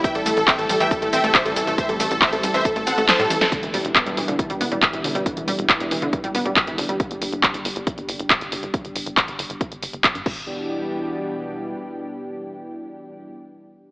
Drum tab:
CC |----------------|----------------|----------------|----------------|
HH |xxoxxxoxxxoxxxox|xxoxxxoxxxoxxxox|xxoxxxoxxxoxxxox|xxoxxxoxxxoxxxox|
SH |xxxxxxxxxxxxxxxx|xxxxxxxxxxxxxxxx|----------------|----------------|
CP |----x-------x---|----x-------x---|----x-------x---|----x-------x---|
SD |----------------|------------o--o|----------------|----------------|
BD |o---o---o---o---|o---o---o-------|o---o---o---o---|o---o---o---o---|

CC |----------------|--------------x-|----------------|----------------|
HH |xxoxxxoxxxoxxxox|xxoxxxoxxxoxxx--|----------------|----------------|
SH |----------------|----------------|----------------|----------------|
CP |----x-------x---|----x-------x---|----------------|----------------|
SD |----------------|----------------|----------------|----------------|
BD |o---o---o---o---|o---o---o---o-o-|----------------|----------------|